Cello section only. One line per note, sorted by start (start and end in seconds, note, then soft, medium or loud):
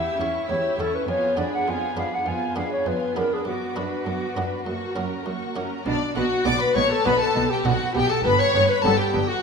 0.19 0.27 E2 medium
0.49 0.57 E2 medium
0.79 0.87 E2 medium
1.07 1.15 F2 medium
1.37 1.45 F2 soft
1.67 1.75 F2 soft
1.96 2.04 F2 soft
2.27 2.35 F2 medium
2.57 2.65 F2 medium
2.86 2.94 F2 medium
3.16 3.24 F2 soft
3.47 3.55 F#2 soft
3.76 3.84 F#2 soft
4.06 4.14 F#2 soft
4.36 4.44 F#2 medium
4.67 4.75 F#2 soft
4.97 5.05 F#2 medium
5.26 5.34 F#2 soft
5.56 5.64 F#2 medium
5.86 5.94 B2 medium
6.16 6.24 B2 medium
6.46 6.54 B2 medium
6.76 6.84 B2 medium
7.06 7.14 B2 medium
7.36 7.44 B2 medium
7.65 7.73 B2 medium
7.94 8.02 B2 medium
8.24 8.32 G2 medium
8.54 8.62 G2 medium
8.84 8.92 G2 medium
9.14 9.22 G2 medium